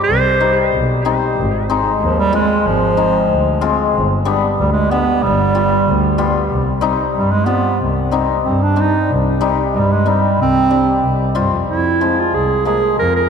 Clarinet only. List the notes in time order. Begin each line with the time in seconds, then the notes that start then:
0.03 C5
2.04 F3
2.19 G3
2.35 G#3
2.67 F3
4.59 G3
4.73 G#3
4.91 B3
5.23 G3
7.16 G3
7.31 G#3
7.46 B3
8.45 C4
8.63 D4
8.81 D#4
9.75 G3
9.92 G#3
10.08 G3
10.42 C4
11.69 E4
12.19 F4
12.34 G#4
12.66 G#4
12.99 A#4
13.16 A#4